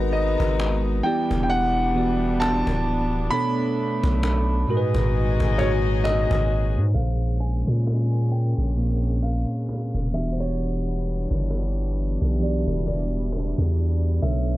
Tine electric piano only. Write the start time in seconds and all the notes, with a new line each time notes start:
Already playing: G#3 D#4 F#4 A#4 B4 D#5 F#5
1.03 E3 B3 E4 G4 D5
1.95 E3 B3 F#4 G4 D5
3.31 B2 B3 D4 A4 C#5
4.67 G#2 A#2 G#3 F#4 A#4
4.77 B4
5.58 G#2 G#3 A#3 F#4 C#5
6.95 A#2 A#3 C#4 G#4 C5
8.77 A#2 A#3 C4 G#4 C5
8.85 C#4
10.13 E3 B3 D4 F#4 G4
12.40 E3 B3 F#4 G4 D5
14.22 B2 B3 D4 A4 C#5